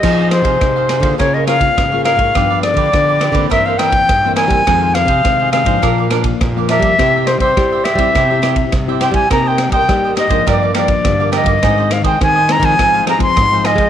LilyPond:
<<
  \new Staff \with { instrumentName = "Flute" } { \time 4/4 \key f \minor \tempo 4 = 104 ees''8 c''4. des''16 ees''16 f''4 f''8~ | f''8 d''4. e''16 f''16 g''4 aes''8~ | aes''8 f''4 f''4 r4 e''8~ | e''8 c''16 c''8. e''4. r8 g''16 aes''16 |
bes''16 g''8 g''8. ees''8 d''8 d''4 ees''8~ | ees''8 f''16 g''16 aes''8 bes''16 aes''8. bes''16 c'''8. ees''8 | }
  \new Staff \with { instrumentName = "Cavaquinho" } { \time 4/4 \key f \minor <ees' aes' c'' f''>16 <aes' c'' f''>16 r16 <aes' c'' f''>8 <aes' c'' f''>16 <ees' aes' c'' f''>16 <aes' c'' f''>16 <f' bes' des'' f''>16 <bes' des'' f''>16 <f' bes' des'' f''>16 r8 <bes' des'' f''>16 <f' bes' des'' f''>16 <bes' des'' f''>16 | <f' g' b' d''>16 <g' b' d''>16 r16 <g' b' d''>8 <g' b' d''>16 <f' g' b' d''>16 <g' b' d''>16 <e' bes' c'' e''>16 <bes' c'' e''>16 <e' bes' c'' e''>16 r8 <bes' c'' e''>16 <e' bes' c'' e''>16 <bes' c'' e''>16 | <ees' aes' c'' f''>16 <aes' c'' f''>16 r16 <aes' c'' f''>8 <aes' c'' f''>16 <ees' aes' c'' f''>16 <aes' c'' f''>16 <d' bes' d'' f''>16 <bes' d'' f''>16 <d' bes' d'' f''>16 r8 <bes' d'' f''>16 <d' bes' d'' f''>16 <bes' d'' f''>16 | <e' g' c'' e''>16 <g' c'' e''>16 r16 <g' c'' e''>8 <g' c'' e''>16 <e' g' c'' e''>16 <g' c'' e''>16 <e' g' c'' e''>16 <g' c'' e''>16 <e' g' c'' e''>16 r8 <g' c'' e''>16 <e' g' c'' e''>16 <g' c'' e''>16 |
<ees' bes' c'' ees''>16 <bes' c'' ees''>16 r16 <bes' c'' ees''>8 <bes' c'' ees''>16 <ees' bes' c'' ees''>16 <bes' c'' ees''>16 <g' bes' d'' f''>16 <bes' d'' f''>16 <g' bes' d'' f''>16 r8 <bes' d'' f''>16 <g' bes' d'' f''>16 <bes' d'' f''>16 | <ees' aes' c'' ees''>16 <aes' c'' ees''>16 r16 <aes' c'' ees''>8 <aes' c'' ees''>16 <ees' aes' c'' ees''>16 <aes' c'' ees''>16 <f' aes' c'' f''>16 <aes' c'' f''>16 <f' aes' c'' f''>16 r8 <aes' c'' f''>16 <f' aes' c'' f''>16 <aes' c'' f''>16 | }
  \new Staff \with { instrumentName = "Nylon-string guitar" } { \time 4/4 \key f \minor << { <c' ees' aes'>4 <c' ees' aes'>8. <bes f' aes'>8. <bes f' aes'>16 <bes f' aes'>8 <bes f' aes'>8. | <f b d'>4 <f b d'>8. <e bes c'>8. <e bes c'>8 r16 <e bes c'>8. | <ees aes c'>8. r16 <ees aes c'>8 <ees aes c'>16 <f bes d'>8. <f bes d'>8. <f bes d'>8. | <c' e' g'>8. r16 <c' e' g'>8 r16 <c' e' g'>8 <c' e' g'>16 <c' e' g'>8 r16 <c' e' g'>8. |
<bes ees' g'>8. r16 <bes ees' g'>8 <bes ees' g'>16 <f bes d'>8. <f bes d'>8. <f bes d'>8. | <ees aes c'>4 <ees aes c'>16 r16 <ees aes c'>16 <f aes c'>8. <f aes c'>16 <f aes c'>8 <f aes c'>8. | } \\ { f4 c4 des4 aes,4 | g,4 d4 g,4 g,4 | f,4 c4 bes,4 f,4 | c4 g,4 c4 g,4 |
c4 g,4 g,4 d4 | aes,4 ees4 aes,4 aes,4 | } >> }
  \new Staff \with { instrumentName = "Nylon-string guitar" } { \clef bass \time 4/4 \key f \minor f8. c16 c8. d16 des4 des8. aes,16 | g,8. d16 d8. d16 g,4 g,8. g16 | f,8. c16 c8. aes,16 bes,4 bes,8. g16 | c8. g16 g8. g16 c4 c8. g16 |
c8. g16 g8. aes,16 g,4 g,8. g,16 | aes,8. ees16 ees8. ees16 aes,4 aes,8. aes16 | }
  \new DrumStaff \with { instrumentName = "Drums" } \drummode { \time 4/4 <cymc bd ss>8 <cymr ss>16 <bd cymr>16 <bd cymr ss>8 <cymr ss>16 <bd cymr>16 <bd cymr ss>8 <cymr ss>16 <bd cymr>16 <bd cymr ss>8 <cymr ss>16 <bd cymr>16 | <bd cymr ss>8 <cymr ss>16 <bd cymr>16 <bd cymr ss>8 <cymr ss>16 <bd cymr>16 <bd cymr ss>8 <cymr ss>16 <bd cymr>16 <bd cymr ss>8 <cymr ss>16 <bd cymr>16 | <bd cymr ss>8 <cymr ss>16 <bd cymr>16 <bd cymr ss>8 <cymr ss>16 <bd cymr>16 <bd cymr ss>8 <cymr ss>16 <bd cymr>16 <bd cymr ss>8 <cymr ss>16 <bd cymr>16 | <bd cymr ss>8 <cymr ss>16 <bd cymr>16 <bd cymr ss>8 <cymr ss>16 <bd cymr>16 <bd cymr ss>8 <cymr ss>16 <bd cymr>16 <bd cymr ss>8 <cymr ss>16 <bd cymr>16 |
<bd cymr ss>8 <cymr ss>16 <bd cymr>16 <bd cymr ss>8 <cymr ss>16 <bd cymr>16 <bd cymr ss>8 <cymr ss>16 <bd cymr>16 <bd cymr ss>8 <cymr ss>16 <bd cymr>16 | <bd cymr ss>8 <cymr ss>16 <bd cymr>16 <bd cymr ss>8 <cymr ss>16 <bd cymr>16 <bd cymr ss>8 <cymr ss>16 <bd cymr>16 <bd cymr ss>8 <cymr ss>16 <bd cymr>16 | }
>>